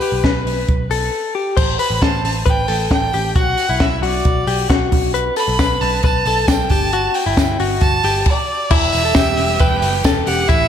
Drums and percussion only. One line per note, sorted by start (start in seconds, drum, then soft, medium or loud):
0.01 open hi-hat medium
0.24 kick loud
0.24 snare loud
0.24 closed hi-hat medium
0.47 open hi-hat medium
0.68 kick loud
0.68 closed hi-hat medium
0.91 open hi-hat medium
1.57 kick loud
1.57 crash medium
1.79 open hi-hat medium
2.02 kick loud
2.02 snare loud
2.02 closed hi-hat medium
2.25 open hi-hat medium
2.46 kick loud
2.46 closed hi-hat medium
2.68 open hi-hat medium
2.91 kick loud
2.91 snare loud
2.91 closed hi-hat medium
3.13 open hi-hat medium
3.36 kick loud
3.36 closed hi-hat medium
3.57 open hi-hat medium
3.80 kick loud
3.80 snare loud
3.80 closed hi-hat medium
4.03 open hi-hat medium
4.25 kick loud
4.25 closed hi-hat medium
4.47 open hi-hat medium
4.70 kick loud
4.70 snare loud
4.70 closed hi-hat medium
4.92 kick loud
4.92 open hi-hat medium
5.15 closed hi-hat medium
5.15 tambourine soft
5.36 open hi-hat medium
5.36 tambourine medium
5.59 kick loud
5.59 snare loud
5.59 closed hi-hat medium
5.59 tambourine medium
5.82 open hi-hat medium
6.03 kick loud
6.03 closed hi-hat medium
6.03 tambourine soft
6.26 open hi-hat medium
6.26 tambourine soft
6.48 kick loud
6.48 snare loud
6.48 closed hi-hat medium
6.48 tambourine loud
6.70 kick loud
6.70 open hi-hat medium
6.70 tambourine soft
6.93 closed hi-hat medium
7.14 open hi-hat medium
7.14 tambourine medium
7.37 kick loud
7.37 snare loud
7.37 closed hi-hat medium
7.37 tambourine medium
7.60 open hi-hat medium
7.60 tambourine soft
7.81 kick loud
7.81 closed hi-hat medium
7.81 tambourine soft
8.03 open hi-hat medium
8.03 tambourine soft
8.26 kick loud
8.26 crash medium
8.71 kick loud
8.71 crash loud
8.92 open hi-hat medium
8.92 tambourine medium
9.14 kick loud
9.14 snare loud
9.14 hi-hat pedal medium
9.14 ride medium
9.14 tambourine medium
9.37 open hi-hat medium
9.37 tambourine soft
9.59 kick loud
9.59 hi-hat pedal medium
9.59 ride medium
9.59 tambourine medium
9.82 open hi-hat medium
9.82 tambourine medium
10.04 kick loud
10.04 snare loud
10.04 ride medium
10.04 tambourine loud
10.27 open hi-hat medium
10.27 tambourine medium
10.49 kick loud
10.49 hi-hat pedal medium
10.49 ride medium
10.49 tambourine soft